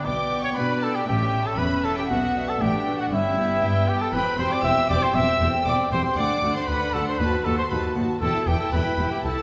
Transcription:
0.04 double bass section B1, lute B2, cello section B2, viola section B3, trumpet D5, violin section G5 D6
0.31 lute B3 E4 G4
0.42 trumpet C#5, violin section C#6
0.55 double bass section B2, lute B3, cello section B3, viola section D4, trumpet B4, violin section D5 B5
0.80 lute B3 E4 G4, trumpet A4, violin section A5
0.92 trumpet G4, violin section G5
1.04 double bass section A1, lute A2, viola section C#4, violin section E5 G5
1.08 cello section A2, trumpet G4
1.33 lute C#4 E4 A4
1.44 trumpet A4, violin section A5
1.56 double bass section E1, lute E2, cello section E2, trumpet B4, violin section B5
1.83 lute C#4 E4 A4, trumpet A4, violin section A5
1.96 trumpet G4, violin section G5
2.08 double bass section B1, lute B2, cello section B2, viola section B3, trumpet F#4, violin section F#5
2.36 lute B3 D4 F#4
2.47 trumpet A4, violin section A5
2.60 double bass section A1, cello section A2, lute A2, viola section D4, trumpet G4, violin section G5
2.86 lute B3 D4 F#4
2.98 trumpet F#4, violin section F#5
3.11 double bass section G1, lute G2, cello section G2, viola section C#4, trumpet E4, violin section E5
3.37 viola section B3, lute B3 E4 G4
3.62 double bass section G2, cello section G3, lute G3, viola section B3, violin section G5
3.87 lute B3 E4 G4, trumpet G4, violin section G5
4.00 trumpet A4, violin section A5
4.13 double bass section E1, lute E2, cello section E2, viola section C4, trumpet B4, violin section G5 B5
4.37 double bass section E1, lute E2 C4 E4 G4, cello section E2, viola section C4, trumpet C5, violin section G5 C6
4.51 trumpet D5, violin section D6
4.62 double bass section E1, lute E2, cello section E2, viola section C4, trumpet E5, violin section G5 E6
4.88 double bass section E1, lute E2 C4 E4 G4, cello section E2, viola section C4, trumpet D5, violin section G5 D6
5.01 trumpet C5, violin section C6
5.14 double bass section E1, cello section E2, lute E2, viola section C4, trumpet E5, violin section G5 E6
5.40 double bass section E1, lute E2 C4 G4 A4, cello section E2, viola section C4, violin section G5
5.65 double bass section E1, lute E2, cello section E2, viola section C4, trumpet D5, violin section G5 D6
5.91 double bass section E1, lute E2 C4 G4 A4, cello section E2, viola section C4, trumpet C5, violin section G5 C6
6.04 trumpet C5, violin section C6
6.16 double bass section D2, cello section D2, lute D2, viola section D4, trumpet D5, violin section F#5 D6
6.42 double bass section D2, cello section D2, lute D2 A3 F#4 A4, viola section D4, violin section F#5
6.55 trumpet C5, violin section C6
6.66 double bass section D2, cello section D2, lute D2, viola section D4, trumpet B4, violin section F#5 B5
6.92 double bass section D2, lute D2 A3 F#4 A4, cello section D2, viola section D4, trumpet A4, violin section F#5 A5
7.06 trumpet C5, violin section C6
7.19 double bass section D#2, cello section D#2, lute D#2, viola section F#4, trumpet B4, violin section A5 B5
7.44 double bass section D#2, lute D#2 B3 F#4 A4, cello section D#2, viola section F#4, trumpet A4, violin section A5
7.57 trumpet C5, violin section C6
7.70 double bass section D#2, lute D#2, cello section D#2, viola section F#4, trumpet B4, violin section A5 B5
7.95 lute D#2 B3 F#4 A4, cello section D#2, double bass section D#2, viola section F#4, violin section A5
8.21 double bass section E1, lute E2, cello section E2, viola section E4, trumpet A4, violin section G5 A5
8.46 double bass section E1, lute E2 B3 E4 G4, cello section E2, viola section E4, trumpet G4, violin section G5
8.59 trumpet A4, violin section A5
8.72 double bass section E1, lute E2, cello section E2, viola section E4, trumpet B4, violin section G5 B5
8.98 double bass section E1, lute E2 B3 E4 G4, cello section E2, viola section E4, violin section G5
9.12 trumpet G4, violin section G5
9.23 double bass section C2, cello section C2, viola section E4, trumpet A4, violin section A5

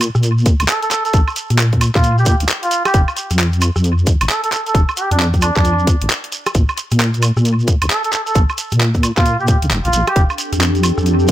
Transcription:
0.01 closed hi-hat, high woodblock, shekere
0.15 wobble bass A#2, cross-stick, shekere
0.23 closed hi-hat, shekere
0.38 shekere
0.46 kick, closed hi-hat, shekere
0.60 wobble bass D2, closed hi-hat, high woodblock, shekere
0.68 muted trumpet A4, clap, closed hi-hat, shekere
0.82 muted trumpet A4, closed hi-hat, shekere
0.91 muted trumpet A4, clap, closed hi-hat, shekere
1.05 muted trumpet A4, closed hi-hat, shekere
1.13 wobble bass A#1, kick, closed hi-hat, shekere
1.28 high woodblock, shekere
1.36 closed hi-hat, shekere
1.50 wobble bass A#2, cross-stick, closed hi-hat, shekere
1.59 clap, shekere
1.73 kick, closed hi-hat, shekere
1.81 closed hi-hat, high woodblock, shekere
1.95 wobble bass A#2, muted trumpet F4, kick, cross-stick, clap, shekere
2.04 closed hi-hat, shekere
2.18 muted trumpet G4, shekere
2.26 muted trumpet G4, kick, closed hi-hat, shekere
2.40 wobble bass D2, closed hi-hat, shekere
2.49 clap, closed hi-hat, shekere
2.63 muted trumpet F4, closed hi-hat, shekere
2.71 closed hi-hat, shekere
2.85 muted trumpet G4, cross-stick, closed hi-hat, high woodblock, shekere
2.94 wobble bass F1, kick, closed hi-hat, shekere
3.08 high woodblock, shekere
3.17 closed hi-hat, shekere
3.31 wobble bass F2, cross-stick, closed hi-hat, shekere
3.39 clap, shekere
3.53 closed hi-hat, shekere
3.61 closed hi-hat, high woodblock, shekere
3.76 wobble bass F2, cross-stick, shekere
3.84 closed hi-hat, shekere
3.98 shekere
4.07 kick, closed hi-hat, shekere
4.21 wobble bass A1, closed hi-hat, high woodblock, shekere
4.29 muted trumpet A4, clap, closed hi-hat, shekere
4.44 muted trumpet A4, closed hi-hat, shekere
4.52 muted trumpet A4, clap, closed hi-hat, shekere
4.66 muted trumpet A4, closed hi-hat, shekere
4.75 wobble bass F1, kick, closed hi-hat, shekere
4.89 high woodblock, shekere
4.97 muted trumpet G4, closed hi-hat, shekere
5.11 wobble bass F2, muted trumpet D4, cross-stick, closed hi-hat, shekere
5.20 clap, shekere
5.34 kick, closed hi-hat, shekere
5.42 muted trumpet D4, closed hi-hat, high woodblock, shekere
5.55 wobble bass F2, muted trumpet D4, kick, cross-stick, clap, shekere
5.65 closed hi-hat, shekere
5.79 shekere
5.87 kick, closed hi-hat, shekere
6.01 wobble bass A1, closed hi-hat, shekere
6.10 clap, closed hi-hat, shekere
6.24 closed hi-hat, shekere
6.32 closed hi-hat, shekere
6.46 cross-stick, closed hi-hat, high woodblock, shekere
6.55 wobble bass A#1, kick, closed hi-hat, shekere
6.69 high woodblock, shekere
6.77 closed hi-hat, shekere
6.91 wobble bass A#2, cross-stick, closed hi-hat, shekere
7.00 clap, shekere
7.14 closed hi-hat, shekere
7.22 closed hi-hat, high woodblock, shekere
7.37 wobble bass A#2, cross-stick, shekere
7.45 closed hi-hat, shekere
7.59 shekere
7.68 kick, closed hi-hat, shekere
7.82 wobble bass D2, closed hi-hat, high woodblock, shekere
7.90 muted trumpet A4, clap, closed hi-hat, shekere
8.04 muted trumpet A4, closed hi-hat, shekere
8.12 muted trumpet A4, clap, closed hi-hat, shekere
8.27 muted trumpet A4, closed hi-hat, shekere
8.35 wobble bass A#1, kick, closed hi-hat, shekere
8.49 high woodblock, shekere
8.58 closed hi-hat, shekere
8.71 wobble bass A#2, cross-stick, closed hi-hat, shekere
8.80 clap, shekere
8.94 kick, closed hi-hat, shekere
9.03 closed hi-hat, high woodblock, shekere
9.17 wobble bass A#2, muted trumpet F4, kick, cross-stick, clap, shekere
9.26 closed hi-hat, shekere
9.40 muted trumpet G4, shekere
9.48 muted trumpet G4, kick, closed hi-hat, shekere
9.62 wobble bass D2, closed hi-hat, shekere
9.71 wobble bass F1, clap, closed hi-hat, shekere
9.85 wobble bass A#1, muted trumpet F4, closed hi-hat, shekere
9.93 wobble bass A#1, closed hi-hat, shekere
10.07 muted trumpet G4, cross-stick, closed hi-hat, high woodblock, shekere
10.16 wobble bass F1, ambient pad C4 D4 G4 A4, kick, closed hi-hat, shekere
10.30 high woodblock, shekere
10.38 closed hi-hat, shekere
10.53 wobble bass F2, cross-stick, closed hi-hat, shekere
10.57 ambient pad G4
10.61 clap, shekere
10.75 closed hi-hat, shekere
10.83 closed hi-hat, high woodblock, shekere
10.98 wobble bass F2, cross-stick, shekere
11.06 closed hi-hat, shekere
11.19 shekere
11.28 closed hi-hat, shekere

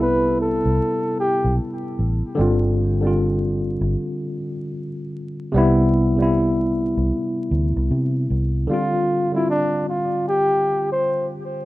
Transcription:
Already playing: fingered electric bass C2, tine electric piano C3 G3 B3 E4
0.02 flugelhorn B4
0.41 flugelhorn A4
0.65 fingered electric bass C2
1.20 flugelhorn G4
1.44 fingered electric bass B1
1.99 fingered electric bass A1
2.35 fingered electric bass G1, tine electric piano D3 G3 C4
2.41 tine electric piano F4
3.01 tine electric piano D3 G3
3.05 tine electric piano C4 F4
3.81 fingered electric bass G1
5.52 fingered electric bass C2, tine electric piano C3 G3
5.56 tine electric piano B3 E4
6.16 tine electric piano C3 G3 B3
6.22 tine electric piano E4
6.97 fingered electric bass C2
7.51 fingered electric bass D2
7.76 fingered electric bass C2
7.91 fingered electric bass C3
8.30 fingered electric bass C2
8.67 tine electric piano D3 G3, flugelhorn F4
8.71 tine electric piano C4 F4
9.32 tine electric piano D3 G3 C4, flugelhorn E4
9.38 tine electric piano F4
9.50 flugelhorn D4
9.89 flugelhorn F4
10.28 flugelhorn G4
10.92 flugelhorn C5

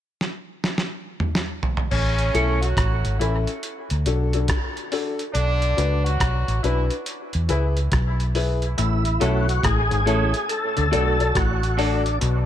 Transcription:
0.21 snare
0.64 snare
0.78 snare
1.20 mid tom
1.35 snare
1.63 floor tom
1.77 floor tom
1.91 fingered electric bass A1, horn section C#3 C#4, crash
2.18 closed hi-hat
2.34 fingered electric bass B1, clean electric guitar A3 E4 A4 C#5, upright piano C#4 E4 A4, closed hi-hat
2.61 horn section F#3 F#4, closed hi-hat
2.77 fingered electric bass A1, kick, cross-stick, closed hi-hat
3.05 fingered electric bass G#1, closed hi-hat
3.19 fingered electric bass A1, horn section E3 E4, upright piano C#4 E4 A4, closed hi-hat
3.47 closed hi-hat
3.63 closed hi-hat
3.90 fingered electric bass D2, closed hi-hat
4.06 fingered electric bass B1, upright piano D4 F#4 A4, closed hi-hat
4.33 upright piano D4 F#4 A4, closed hi-hat
4.48 kick, cross-stick, closed hi-hat
4.77 closed hi-hat
4.92 upright piano D4 F#4 A4, open hi-hat
5.19 closed hi-hat
5.34 fingered electric bass B1, horn section D3 D4, closed hi-hat
5.62 closed hi-hat
5.77 fingered electric bass C#2, upright piano D4 F#4 B4, closed hi-hat
6.05 horn section F#3 F#4, closed hi-hat
6.20 fingered electric bass B1, kick, cross-stick, closed hi-hat
6.48 fingered electric bass A1, closed hi-hat
6.63 fingered electric bass B1, horn section E3 E4, upright piano D4 F#4 B4, closed hi-hat
6.90 closed hi-hat
7.06 closed hi-hat
7.33 fingered electric bass E2, closed hi-hat
7.49 fingered electric bass C#2, horn section E3 E4, upright piano E4 G#4 B4, closed hi-hat
7.77 closed hi-hat
7.92 fingered electric bass B1, kick, cross-stick, closed hi-hat
8.20 closed hi-hat
8.35 upright piano E4 G#4 B4, open hi-hat
8.62 closed hi-hat
8.78 fingered electric bass A1, clav A2, tonewheel organ E4, closed hi-hat
9.05 closed hi-hat
9.20 fingered electric bass B1, clav B2, clean electric guitar A3 C#4 E4 A4, upright piano E4 A4 C#5, tonewheel organ F#4, closed hi-hat
9.49 closed hi-hat
9.63 fingered electric bass A1, clav A2, tonewheel organ G#4, kick, cross-stick, closed hi-hat
9.91 fingered electric bass G#1, clav G#2, closed hi-hat
10.06 fingered electric bass A1, clav A2, clean electric guitar A3 C#4 E4 A4, upright piano E4 A4 C#5, closed hi-hat
10.34 closed hi-hat
10.49 tonewheel organ A4, closed hi-hat
10.77 fingered electric bass D2, clav D3, closed hi-hat
10.91 fingered electric bass B1, clav B2, clean electric guitar A3 D4 F#4 A4, upright piano F#4 A4 D5, closed hi-hat
11.18 upright piano F#4 A4 D5, muted clean electric guitar stroke, closed hi-hat
11.35 fingered electric bass A1, clav A2, tonewheel organ F#4, kick, cross-stick, closed hi-hat
11.63 closed hi-hat
11.77 clean electric guitar A3 D4 F#4 A4, tonewheel organ D4, upright piano F#4 A4 D5, open hi-hat
12.06 closed hi-hat
12.21 fingered electric bass B1, clav B2, closed hi-hat

